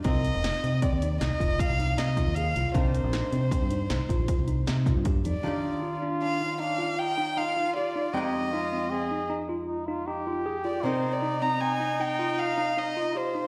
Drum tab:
HH |xxxxxxxxxxxxxx|xxxxxxxxxxxxxx|--------------|--------------|
SD |--o---o---o---|--o---o---oo--|--------------|--------------|
BD |o---o--oo--o--|o---o--oo--oo-|--------------|--------------|

HH |--------------|
SD |--------------|
BD |--------------|